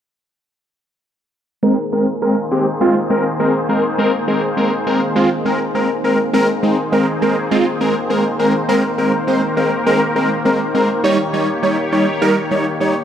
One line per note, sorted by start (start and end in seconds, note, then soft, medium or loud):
1.63 6.30 D#3 medium
1.63 1.77 G#3 loud
1.63 6.30 A#3 medium
1.63 1.77 C4 loud
1.63 6.30 G#4 medium
1.63 1.77 A#4 loud
1.92 2.06 G#3 medium
1.92 2.06 C4 medium
1.92 2.06 A#4 medium
2.22 2.36 G#3 medium
2.22 2.36 C4 medium
2.22 2.36 A#4 loud
2.51 2.65 G#3 medium
2.51 2.65 C4 medium
2.51 2.65 G4 medium
2.81 2.94 G#3 loud
2.81 2.95 C4 loud
2.81 2.95 F4 loud
3.10 3.24 G#3 medium
3.10 3.24 C4 medium
3.10 3.24 A#4 medium
3.40 3.53 G#3 medium
3.40 3.53 C4 medium
3.40 3.53 A#4 medium
3.69 3.83 G#3 medium
3.69 3.83 C4 medium
3.69 3.83 A#4 medium
3.98 4.12 G#3 loud
3.98 4.12 C4 loud
3.98 4.12 A#4 loud
4.28 4.41 G#3 medium
4.28 4.41 C4 medium
4.28 4.42 A#4 medium
4.57 4.71 G#3 medium
4.57 4.71 C4 medium
4.57 4.71 A#4 loud
4.87 5.00 G#3 medium
4.87 5.00 C4 medium
4.87 5.00 A#4 loud
5.16 5.30 G#3 loud
5.16 5.30 C4 loud
5.16 5.30 F4 loud
5.45 5.59 G#3 medium
5.45 5.59 C4 medium
5.45 5.59 A#4 medium
5.75 5.88 G#3 medium
5.75 5.89 C4 medium
5.75 5.89 A#4 medium
6.04 6.18 G#3 medium
6.04 6.18 C4 medium
6.04 6.18 A#4 medium
6.33 13.04 D#3 medium
6.33 6.47 G#3 loud
6.33 13.04 A#3 medium
6.33 6.47 C4 loud
6.33 8.67 G#4 medium
6.33 6.48 A#4 loud
6.33 11.00 C5 medium
6.63 6.77 G#3 medium
6.63 6.77 C4 medium
6.63 6.77 D#4 medium
6.92 7.06 G#3 medium
6.92 7.06 C4 medium
6.92 7.06 A#4 medium
7.22 7.35 G#3 medium
7.22 7.36 C4 medium
7.22 7.36 A#4 medium
7.51 7.65 G#3 loud
7.51 7.65 C4 loud
7.51 7.65 F4 loud
7.80 7.94 G#3 medium
7.80 7.94 C4 medium
7.80 7.95 A#4 medium
8.10 8.24 G#3 medium
8.10 8.24 C4 medium
8.10 8.24 A#4 medium
8.39 8.53 G#3 medium
8.39 8.53 C4 medium
8.39 8.53 A#4 medium
8.69 8.82 G#3 loud
8.69 8.83 C4 loud
8.69 8.83 A#4 loud
8.69 11.02 A#4 medium
8.98 9.12 G#3 medium
8.98 9.12 C4 medium
8.98 9.12 A#4 medium
9.27 9.41 G#3 medium
9.27 9.41 C4 medium
9.27 9.42 C5 medium
9.57 9.71 G#3 medium
9.57 9.71 C4 medium
9.57 9.71 A#4 medium
9.86 10.00 G#3 loud
9.86 10.00 C4 loud
9.86 10.00 A#4 loud
10.16 10.30 G#3 medium
10.16 10.30 C4 medium
10.16 10.30 A#4 medium
10.45 10.59 G#3 medium
10.45 10.59 C4 medium
10.45 10.59 A#4 medium
10.75 10.88 G#3 medium
10.75 10.88 C4 medium
10.75 10.89 A#4 loud
11.04 11.18 G3 loud
11.04 11.18 D#4 loud
11.04 13.04 G4 medium
11.04 11.18 C#5 loud
11.33 11.47 G3 medium
11.33 11.47 D#4 medium
11.33 11.47 C#5 loud
11.63 11.77 G3 medium
11.63 11.77 D#4 medium
11.63 11.77 C#5 medium
11.92 12.06 G3 medium
11.92 12.06 D#4 medium
11.92 12.06 C#5 loud
12.21 12.35 G3 loud
12.21 12.36 D#4 loud
12.21 12.36 A#4 loud
12.51 12.65 G3 medium
12.51 12.65 D#4 medium
12.51 12.65 C#5 medium
12.80 12.94 G3 medium
12.80 12.94 D#4 medium
12.80 12.95 C#5 medium